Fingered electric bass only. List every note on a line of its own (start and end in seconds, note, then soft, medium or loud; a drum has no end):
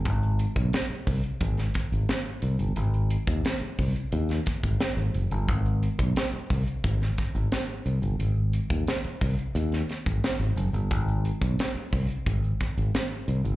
0.06 0.45 G#1 medium
0.56 0.69 B1 loud
0.90 muted fingered electric bass stroke soft
1.07 1.20 C2 medium
1.41 1.67 G#1 loud
1.92 2.05 G#1 medium
2.42 2.56 C2 medium
2.59 2.72 G1 loud
2.76 3.16 G#1 loud
3.27 3.40 D#2 medium
3.61 muted fingered electric bass stroke soft
3.79 3.92 C2 medium
4.13 4.39 D#2 loud
4.63 4.76 G#1 loud
4.97 5.10 G#1 medium
5.14 5.27 F#1 medium
5.31 5.48 G1 loud
5.48 5.87 G#1 loud
5.99 6.12 B1 loud
6.33 muted fingered electric bass stroke soft
6.50 6.63 C2 medium
6.84 7.10 G#1 loud
7.35 7.48 G#1 loud
7.86 7.99 C2 medium
8.02 8.15 G1 loud
8.19 8.58 G#1 loud
8.70 8.83 D#2 medium
9.05 muted fingered electric bass stroke soft
9.21 9.34 C2 loud
9.55 9.81 D#2 loud
10.06 10.19 G#1 medium
10.39 10.52 G#1 medium
10.56 10.69 F#1 loud
10.73 10.91 G1 loud
10.91 11.30 G#1 loud
11.41 11.54 B1 medium
11.75 muted fingered electric bass stroke soft
11.93 12.05 C2 loud
12.26 12.52 G#1 loud
12.77 12.90 G#1 loud
13.28 13.41 C2 medium
13.44 13.56 G1 loud